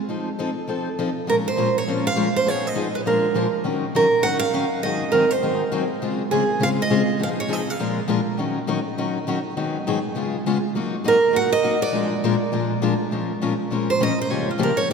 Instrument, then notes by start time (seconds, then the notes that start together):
steel-string acoustic guitar
0.09 F3 C4 D#4 A4
0.39 F3 C4 D#4 A4
0.68 F3 C4 D#4 A4
0.99 F3 C4 D#4 A4
1.27 A#2 F3 G#3 C#4 F4 A#4
1.48 C5
1.57 A#2 F3 G#3 C#4 F4 A#4
1.78 C#5
1.88 A#2 F3 G#3 C#4 F4 A#4
2.07 F5
2.16 A#2 F3 G#3 C#4 F4 A#4
2.36 C5
2.46 F3 B3 D#4 G#4 C#5
2.67 D#5
2.75 F3 B3 D#4 G#4
2.95 B4
3.06 A#2 F3 G#3 D4 F4 A#4
3.34 A#2 F3 G#3 D4 F4 A#4
3.64 D#3 F#3 C#4 D#4 A#4
3.95 D#3 F#3 C#4 D#4 A#4
4.23 D#3 F#3 C#4 D#4 A#4 F#5
4.39 F5
4.53 D#3 F#3 C#4 D#4 A#4
4.83 G#2 D#3 F#3 C4 D#4 G#4 D#5
5.12 G#2 D#3 F#3 C4 D#4 G#4 A#4
5.31 C5
5.43 G#2 D#3 F#3 C4 D#4 G#4
5.72 G#2 D#3 F#3 C4 D#4 G#4
6.02 C#3 G#3 C4 F4 G#4
6.31 C#3 G#3 C4 F4 G#4
6.60 C#3 G#3 C4 F4 G#4 F5
6.82 D#5
6.90 C#3 G#3 C4 F4 G#4
7.19 F3 B3 D#4 G#4
7.23 F5
7.40 C#5
7.48 F3 B3 D#4 G#4
7.53 D#5
7.70 F5
7.79 A#2 F3 G#3 D4 F4 A#4
8.08 A#2 F3 G#3 D4 F4 A#4
8.37 D#3 F#3 C#4 D#4 A#4
8.67 D#3 F#3 C#4 D#4 A#4
8.98 D#3 F#3 C#4 D#4 A#4
9.27 D#3 F#3 C#4 D#4 A#4
9.57 G#2 D#3 F#3 B3 D#4 G#4
9.87 G#2 D#3 F#3 B3 D#4 G#4
10.15 C#3 G#3 B3 F4 G#4
10.46 C#3 G#3 B3 F4 G#4
10.75 F#3 A#3 D#4 F#4
11.04 F#3 A#3 D#4 F#4 A#4
11.33 F#3 A#3 D#4 F#4 F#5
11.53 D#5
11.63 F#3 A#3 D#4 F#4
11.82 D5
11.92 A#2 F3 G#3 D4 F4 A#4
12.24 A#2 F3 G#3 D4 F4 A#4
12.52 A#2 F3 G#3 D4 F4 A#4
12.82 A#2 F3 G#3 D4 F4 A#4
13.11 A#2 F3 G#3 C#4 F4 A#4
13.42 A#2 F3 G#3 C#4 F4 A#4
13.71 A#2 F3 G#3 C#4 F4 A#4
13.90 C5
14.00 A#2 F3 G#3 C#4 F4 A#4 D#5
14.21 C5
14.30 G2 C#3 F3 A#3 F4 G4 C#5
14.51 F4
14.58 G2 C#3 F3 A#3 F4 G4
14.63 A#4
14.77 C#5
14.90 C3